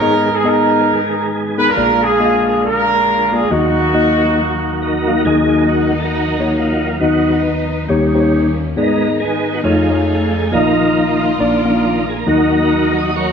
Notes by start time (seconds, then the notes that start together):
Already playing: D#4 A#4
0.01 G#2 D#3 G#3 B3 D#4 G#4 D#5
0.35 G#4
0.44 B3 D#4 G#4 A#4 D#5
1.58 B3 D#4 G#4 A#4 B4
1.67 D4 F4 A#4
1.76 A#1 A#2 D3 G#3 A#3 F4 G#4 D5
2.02 D4 F4 G#4
2.20 A#3 F4 G#4 D#5
2.26 F5
2.46 G#4
2.65 D4 F4 A#4
3.32 A#3 F4 G#4 D5
3.50 D#2 D#3 F#3 A#3 D#4 F#4 D#5
3.94 A#3 D#4 F#4 D#5
4.82 D#4 F#4 A#4
5.07 A#3 D#4 F#4 F5
5.25 D#2 D#3 F#3 A#3 D#4 F4 G#4 D#5
5.32 F#4
5.60 G#4
5.69 F#4
5.98 A4
6.05 D#4 F#4 A#4
6.39 A#3 D#4 F#4 C#5
6.57 A#3 F4
7.00 D#2 D#3 F#3 B3 D#4 F#4 D#5
7.88 D#2 D#3 G3 A#3 C#4 D#4 G4 C#5
8.14 A#3 D#4 G4 C5
8.20 C#5
8.76 G#2 D#3 G#3 B3 D#4 G#4 A#4 D5
8.83 D#5
9.20 B3 D#4 G#4
9.55 F#4
9.63 F2 F3 A3 C#4 D#4 F4 G#4 C#5
9.89 A3 D#4 F4 C#5
10.34 G#4
10.51 A#1 A#2 D#3 F3 A#3 D#4 F4 A#4 D5
10.58 D#5
11.38 A#1 A#2 F3 A#3 D4 F4 D5
11.65 A#3 C#4 F4 F5
11.70 D4
12.09 G#4
12.19 A#4
12.27 D#2 D#3 F#3 A#3 D#4 F#4 A#4 D#5
12.99 D#5
13.10 D#5
13.16 F#4 A#4 C#5